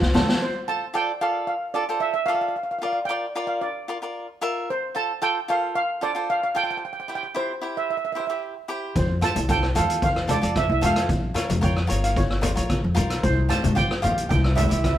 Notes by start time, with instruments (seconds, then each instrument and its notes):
0.02 upright bass C2, snare
0.14 upright bass F3, cavaquinho F4 A4 C5, snare, high conga, low conga
0.29 snare
0.42 steel pan C5
0.68 cavaquinho F4 A4 C5, steel pan A5
0.94 cavaquinho F4 A4 D5, steel pan G5
1.21 cavaquinho F4 A4 D5, steel pan F5
1.47 steel pan F5
1.74 cavaquinho F4 A4 D5, steel pan D5
1.89 cavaquinho F4 A4 C5
2.00 steel pan E5
2.14 steel pan E5
2.26 cavaquinho F4 A4 D5, steel pan F5
2.34 steel pan F5
2.41 steel pan F5
2.48 steel pan F5
2.56 steel pan F5
2.63 steel pan F5
2.71 steel pan F5
2.79 cavaquinho F4 A#4, steel pan F5
2.83 cavaquinho D5, steel pan F5
2.93 steel pan F5
3.05 cavaquinho F4, steel pan G5
3.09 cavaquinho A#4 D5
3.35 cavaquinho F4 A#4 D5
3.47 steel pan F5
3.61 steel pan D5
3.88 cavaquinho F4 A#4 D5
4.02 cavaquinho F4 A#4 D5
4.41 cavaquinho F4 A#4 E5
4.70 steel pan C5
4.95 cavaquinho F4 A4 C5, steel pan A5
5.22 cavaquinho F4 A4 C5, steel pan G5
5.48 cavaquinho F4 A4 C5, steel pan F5
5.75 steel pan F5
6.01 cavaquinho F4 A4 C5, steel pan D5
6.15 cavaquinho F4 A4 C5
6.30 steel pan F5
6.43 steel pan F5
6.55 cavaquinho F4 A4 C5, steel pan G5
6.64 steel pan G5
6.71 steel pan G5
6.77 steel pan G5
6.85 steel pan G5
6.93 steel pan G5
7.00 steel pan G5
7.08 cavaquinho E4 G4 C5, steel pan G5
7.15 steel pan G5
7.23 steel pan G5
7.35 cavaquinho E4 G4 C5, steel pan C5
7.62 cavaquinho E4 G4 C5
7.77 steel pan E5
7.90 steel pan E5
7.97 steel pan E5
8.05 steel pan E5
8.12 cavaquinho E4 G4, steel pan E5
8.16 cavaquinho C5, steel pan E5
8.27 cavaquinho E4 G4 C5, steel pan E5
8.68 cavaquinho E4 G4 C5
8.96 upright bass F2, steel pan C5, kick, closed hi-hat
9.21 cavaquinho F4 A4 C5, steel pan A5, cross-stick, closed hi-hat, low conga
9.36 upright bass C2, closed hi-hat, high conga
9.49 cavaquinho F4 A4 C5, steel pan G5, kick, closed hi-hat
9.63 cross-stick
9.75 upright bass E2, cavaquinho F4 A4 C5, steel pan F5, closed hi-hat, low conga
9.90 closed hi-hat
10.02 steel pan F5, kick, closed hi-hat
10.16 cross-stick
10.28 cavaquinho F4 A4 C5, steel pan D5, closed hi-hat, high conga
10.41 upright bass F2, cavaquinho F4 A4 D5, closed hi-hat
10.56 steel pan E5, kick, cross-stick, closed hi-hat
10.69 upright bass C2, steel pan E5
10.81 upright bass F2, cavaquinho F4 A4 C5, steel pan F5, closed hi-hat, high conga, low conga
10.96 cross-stick, closed hi-hat
11.09 upright bass A#1, kick, closed hi-hat
11.34 cavaquinho F4 A#4 C#5, cross-stick, closed hi-hat, low conga
11.50 upright bass F2, closed hi-hat, high conga
11.61 cavaquinho F4 A#4 C#5, steel pan G5, kick, closed hi-hat
11.76 cross-stick
11.87 upright bass G1, cavaquinho F4 A#4 C#5, closed hi-hat
12.04 steel pan F5, closed hi-hat
12.16 steel pan C#5, kick, closed hi-hat
12.30 cross-stick
12.41 cavaquinho F4 A#4 C5, closed hi-hat, high conga, low conga
12.55 upright bass A#1, cavaquinho F4 A#4 C#5, closed hi-hat
12.70 kick, cross-stick, closed hi-hat
12.84 upright bass F2
12.95 upright bass B1, cavaquinho F4 A#4 C5, closed hi-hat, low conga
13.10 cross-stick, closed hi-hat
13.23 upright bass C2, steel pan C5, kick, closed hi-hat
13.49 cavaquinho F4 G4 C5, steel pan A5, cross-stick, closed hi-hat, low conga
13.64 upright bass G2, closed hi-hat, high conga
13.75 cavaquinho F4 G4 C5, steel pan G5, kick, closed hi-hat
13.91 cross-stick
14.02 upright bass A#1, cavaquinho F4 G4 C5, steel pan F5, closed hi-hat, low conga
14.18 closed hi-hat
14.29 upright bass C2, steel pan G5, kick, closed hi-hat
14.44 cross-stick
14.55 cavaquinho E4 G4 C5, steel pan E5, closed hi-hat, high conga, low conga
14.64 steel pan E5
14.69 upright bass C2, cavaquinho E4 G4 C5, steel pan E5, closed hi-hat
14.79 steel pan E5
14.84 steel pan E5, kick, cross-stick, closed hi-hat
14.93 steel pan E5